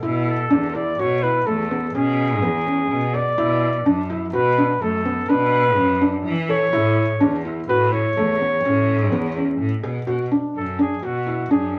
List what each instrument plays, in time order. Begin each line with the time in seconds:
0.03 cello B2, felt piano E4
0.28 flugelhorn A4
0.50 cello E2, felt piano D4
0.75 felt piano E4, flugelhorn D5
0.99 cello B2, felt piano F#4, flugelhorn C#5
1.23 felt piano E4, flugelhorn B4
1.46 cello E2, felt piano A3, flugelhorn A4
1.71 felt piano B3
1.95 cello B2, felt piano C#4, flugelhorn G#4
2.42 cello E2, felt piano B3
2.66 felt piano C#4
2.90 cello B2
3.14 felt piano G#4, flugelhorn D5
3.38 cello B2, felt piano E4
3.86 cello F#2, felt piano D4
4.10 felt piano E4
4.33 cello B2, felt piano F#4, flugelhorn B4
4.58 felt piano D4
4.80 cello F#2, felt piano A3, flugelhorn A4
5.05 felt piano B3
5.29 cello B2, felt piano D4, flugelhorn B4
5.77 cello F#2, felt piano C#4
6.01 felt piano D4
6.25 cello E3
6.49 felt piano A4, flugelhorn C#5
6.73 cello A2, felt piano E4
7.21 cello E2, felt piano D4
7.45 felt piano E4
7.69 cello A2, felt piano F#4, flugelhorn B4
7.92 felt piano E4, flugelhorn C#5
8.16 cello E2, felt piano A3
8.41 felt piano B3
8.64 cello A2, felt piano C#4
9.12 cello E2, felt piano B3
9.36 felt piano C#4
9.60 cello A2
9.83 cello B2, felt piano G#4
10.07 cello B2, felt piano F#4
10.31 felt piano D4
10.55 cello F#2, flugelhorn A4
10.79 felt piano D4, flugelhorn G#4
11.02 cello B2, felt piano F#4, flugelhorn F#4
11.26 felt piano E4
11.50 cello F#2, felt piano D4, flugelhorn G#4